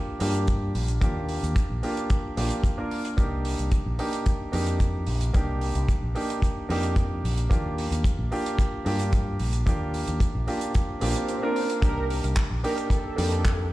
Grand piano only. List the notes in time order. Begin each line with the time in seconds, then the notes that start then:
Already playing: A#3 D4 F4 G4
0.20 A#3 D4 F4 G4
1.01 A#3 D4 F4 G4
1.83 A#3 D4 F4 G4
2.37 A#3 D4 F4 G4
2.78 A#3 D4 F4 A#4
3.17 A#3 D4 D#4 G4
3.99 A#3 D4 D#4 G4
4.52 A#3 D4 D#4 G4
5.33 A#3 D4 D#4 G4
6.15 A#3 D4 D#4 G4
6.69 A#3 D4 D#4 G4
7.50 A#3 D4 F4 G4
8.31 A#3 D4 F4 G4
8.85 A#3 D4 F4 G4
9.66 A#3 D4 F4 G4
10.47 A#3 D4 F4 G4
11.01 A#3 D4 F4 G4
11.42 A#3 D4 F4 A#4
11.82 A#3 D4 D#4 G4
12.63 A#3 D4 D#4 G4
13.16 A#3 D4 D#4 G4